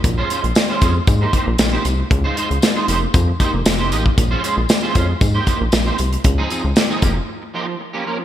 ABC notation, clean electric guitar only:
X:1
M:4/4
L:1/16
Q:1/4=116
K:Bbdor
V:1 name="Clean electric guitar"
z [A,DFc] [A,DFc] z2 [A,DFc] [A,DFc] z2 [B,EGc] [B,EGc] z2 [B,EGc] z2 | z [A,EFc] [A,EFc] z2 [A,EFc] [B,EGc] z3 [B,EGc] z2 [B,EGc] [B,EGe] z | z [A,DFc] [A,DFc] z2 [A,DFc] [A,DFc] z2 [B,EGc] [B,EGc] z2 [B,EGc] z2 | z [F,CEA] [F,CEA] z2 [F,CEA] [F,B,EG] z3 [F,B,EG] z2 [F,B,DG] [F,B,DB] z |]